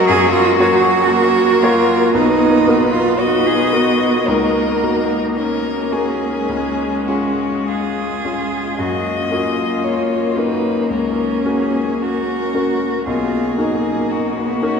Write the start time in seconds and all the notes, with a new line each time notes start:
Already playing: F#3 F#4
0.07 F#2 G#4
0.32 F4
0.59 A#3 F#4 C#5
1.08 A#3 A#4
1.62 A#3 F4 F#4 C#5
2.14 B1 B3 D#4 B4
2.67 B3 F#4 A#4
2.93 F4
3.18 B3 F#4 D#5
3.46 G#4
3.72 B3 F#4 A#4
4.27 C#2 A#3 D#4 A#4
4.82 A#3 F#4 A#4
5.36 C#4 A#4
5.92 A#3 F#4 G#4 A#4
6.47 C#2 G#3
7.07 C#4 F4 F#4 G#4
7.68 F4 G#4
8.24 C#4 F4 G#4
8.77 F#2 A#3 F#4 D#5
9.31 C#4 F4 F#4 A#4
9.84 C#5
10.36 C#4 D#4 F#4 A#4 B4
10.89 C#2 C#4 A#4
11.45 C#4 F#4 G#4 A#4
12.01 F#4 A#4
12.54 C#4 F#4 A#4
13.06 B1 A#3 F4 G#4
13.58 D#4 F#4 A#4
14.11 F#4
14.38 B3
14.62 C#4 D#4 F#4 A#4